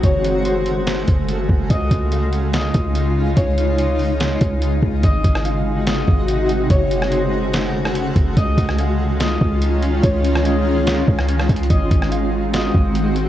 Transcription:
Already playing: G#3 F#4 D#5 F5
0.03 F#1 C#3 A3 C#5, kick, closed hi-hat
0.25 closed hi-hat
0.45 C5, closed hi-hat
0.66 closed hi-hat
0.87 snare, closed hi-hat
1.08 F#1, kick, closed hi-hat
1.28 closed hi-hat
1.49 F#1, kick
1.70 C#2 G#3 D#4 F4 D#5, kick, closed hi-hat
1.91 C#2, kick, closed hi-hat
2.12 F5, closed hi-hat
2.33 closed hi-hat
2.53 D#5, snare, closed hi-hat
2.74 C#2, kick, closed hi-hat
2.95 closed hi-hat
3.36 C#2 C#5, kick, closed hi-hat
3.58 closed hi-hat
3.78 D#5, closed hi-hat
3.99 open hi-hat
4.20 snare, closed hi-hat
4.41 C#2, kick, closed hi-hat
4.62 closed hi-hat
4.82 C#2, kick
5.03 G#1 C3 G#3 D#4 F#4 D#5, kick, closed hi-hat
5.24 G#1, kick, closed hi-hat
5.35 cross-stick
5.45 F5, closed hi-hat
5.87 D#5, snare, closed hi-hat
6.08 G#1, kick
6.28 closed hi-hat
6.49 closed hi-hat
6.70 F#1 C#3 A3 F#4 C#5, kick, closed hi-hat
6.91 closed hi-hat
7.02 cross-stick
7.12 C5, closed hi-hat
7.53 snare, closed hi-hat
7.85 cross-stick
7.95 closed hi-hat
8.16 F#1, kick, closed hi-hat
8.37 C#2 D#3 C#4 F4 D#5, kick, closed hi-hat
8.58 C#2, kick, closed hi-hat
8.69 cross-stick
8.78 F5, closed hi-hat
9.20 D#5, snare, closed hi-hat
9.41 C#2, kick
9.62 closed hi-hat
9.83 closed hi-hat
10.02 C#2 C#5, kick, closed hi-hat
10.24 closed hi-hat
10.35 cross-stick
10.45 D#5, closed hi-hat
10.87 snare, closed hi-hat
11.08 C#2, kick
11.19 cross-stick
11.28 closed hi-hat
11.39 cross-stick
11.49 C#2, kick, closed hi-hat
11.56 closed hi-hat
11.63 closed hi-hat
11.70 G#1 D#3 C4 F#4 D#5, kick, closed hi-hat
11.91 G#1, kick, closed hi-hat
12.02 cross-stick
12.11 F5, closed hi-hat
12.54 D#5, snare, closed hi-hat
12.75 G#1, kick
12.95 closed hi-hat
13.16 closed hi-hat

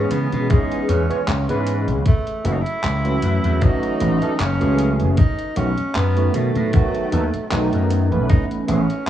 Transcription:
Already playing: E3 G#3 B3 C#4 G#4
0.11 C#3 B3, closed hi-hat
0.33 B2, closed hi-hat
0.50 E3 G#3 B3 C#4 D#4 G#4, kick, closed hi-hat
0.72 closed hi-hat
0.89 E2 C#4, closed hi-hat
1.09 E3 G#3 B3 C#4 C#5, muted slap bass stroke, closed hi-hat
1.28 C#2, clap, closed hi-hat
1.49 G#2 E3 G#3 B3 C#4 B4, closed hi-hat
1.67 closed hi-hat
1.88 C#2, closed hi-hat
2.06 A3, kick, closed hi-hat
2.27 closed hi-hat
2.44 F#1 E3 F#3 A3 C#4 E4 F#4, closed hi-hat
2.53 D#4
2.62 E4
2.66 closed hi-hat
2.84 C#2, clap, closed hi-hat
3.04 E3 F#3 A3 C#4 F#4, closed hi-hat
3.22 F#2, closed hi-hat
3.44 E2, closed hi-hat
3.61 E3 F#3 A3 C#4 D#4 F#4, kick, closed hi-hat
3.83 closed hi-hat
4.00 A1, closed hi-hat
4.21 E3 F#3 A3 C#4 A4, muted slap bass stroke, closed hi-hat
4.39 F#1 C#4, clap, closed hi-hat
4.60 C#2 E3 F#3 A3 C#4 G#4, closed hi-hat
4.78 closed hi-hat
4.99 F#1, closed hi-hat
5.17 D#4, kick, closed hi-hat
5.38 closed hi-hat
5.56 B1 D#3 F#3 A3 B3 C#4 F#4, closed hi-hat
5.77 closed hi-hat
5.95 F#2 B3, clap, closed hi-hat
6.16 D#3 F#3 A3 B3 F#4, closed hi-hat
6.34 B2 A3, closed hi-hat
6.55 A2, closed hi-hat
6.73 D#3 F#3 A3 B3 F#4, kick, closed hi-hat
6.95 closed hi-hat
7.12 D#2 D#3 F#3 A3 B3 A4, closed hi-hat
7.34 muted slap bass stroke, closed hi-hat
7.50 B1 D#3 F#3 A3 B3 D#4, clap, closed hi-hat
7.73 F#2, closed hi-hat
7.90 closed hi-hat
8.10 B1 E3 A3 B3 C#4 B4, closed hi-hat
8.29 D#4, kick, closed hi-hat
8.51 closed hi-hat
8.67 A1 E3 A3 B3 C#4 G#4, closed hi-hat
8.90 closed hi-hat

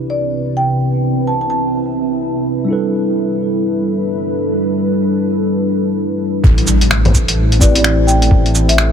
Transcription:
Already playing: C3 C4 D4 E4 G4 B4 D5
0.10 D5
0.57 G5
0.80 E5
1.27 A5
1.41 A5
1.50 A5
2.65 G3 D4 E4
2.69 G3 D4 A4 B4
6.44 A1 A3 E4 G4 A4 C5, kick, impact
6.58 closed hi-hat
6.67 cabasa
6.81 closed hi-hat
6.91 finger snap
7.05 closed hi-hat, low bongo
7.14 kick, cabasa
7.28 closed hi-hat
7.52 closed hi-hat
7.59 C4 E4 G4 B4 D5, kick, cabasa
7.71 C4 E4, closed hi-hat
7.77 G4 D5
7.84 finger snap
8.07 G5, cabasa
8.22 closed hi-hat
8.31 A1, kick
8.46 closed hi-hat
8.55 cabasa
8.69 E5, closed hi-hat
8.78 finger snap

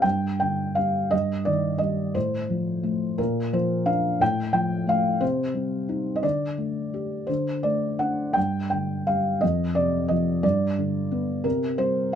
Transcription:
0.02 G2 G5
0.40 D3 G5
0.75 G3 F5
1.11 G2 D#5
1.45 D#3 D5
1.78 G3 D#5
2.15 A2 C5
2.50 F3
2.83 A3
3.18 A#2 A#4
3.53 F3 C5
3.86 D4 F5
4.20 A2 G5
4.53 F3 G5
4.87 A3 F5
5.21 C3 C5
5.55 G3
5.89 D#4
6.16 D#5
6.23 D3 D5
6.58 A3
6.94 G4
7.27 D3 C5
7.63 A3 D5
7.99 D4 F#5
8.33 G2 G5
8.70 D3 G5
9.07 G3 F5
9.41 F2 D#5
9.75 C3 D5
10.08 F3 D#5
10.43 G2 D5
10.79 D3
11.11 B3
11.44 C3 A#4
11.78 G3 C5

